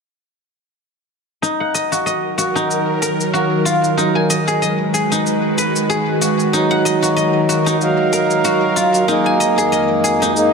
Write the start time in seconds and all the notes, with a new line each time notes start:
1.42 D#3 F#3 D#4 A#4, cabasa
1.60 F#5
1.75 D#5, cabasa
1.92 F#4, cabasa
2.06 D#5, cabasa
2.38 F#4, cabasa
2.55 D#4, cabasa
2.71 cabasa
3.02 A#4, cabasa
3.20 cabasa
3.33 F#4, cabasa
3.65 F4, cabasa
3.84 cabasa
3.97 D#3 G#3 D#4 F#4 B4, cabasa
4.15 G#5
4.30 D#5, cabasa
4.48 G#4, cabasa
4.62 D#5, cabasa
4.94 G#4, cabasa
5.12 D#4, cabasa
5.26 cabasa
5.58 B4, cabasa
5.76 cabasa
5.90 G#4, cabasa
6.21 F#4, cabasa
6.39 cabasa
6.51 F#3 D#4 A#4, cabasa
6.71 F#5
6.85 D#5, cabasa
7.02 F#4, cabasa
7.17 D#5, cabasa
7.49 F#4, cabasa
7.66 D#4, cabasa
7.79 F#3 D#4 F5, cabasa
8.13 A#4, cabasa
8.30 cabasa
8.44 F#4, cabasa
8.76 F4, cabasa
8.94 cabasa
9.06 F2 G#3 A#3 D#4, cabasa
9.10 G#4
9.26 G#5
9.40 D#5, cabasa
9.58 G#4, cabasa
9.72 D#5, cabasa
10.04 G#4, cabasa
10.22 D#4, cabasa
10.35 A#3 D#4 G#4, swell, cabasa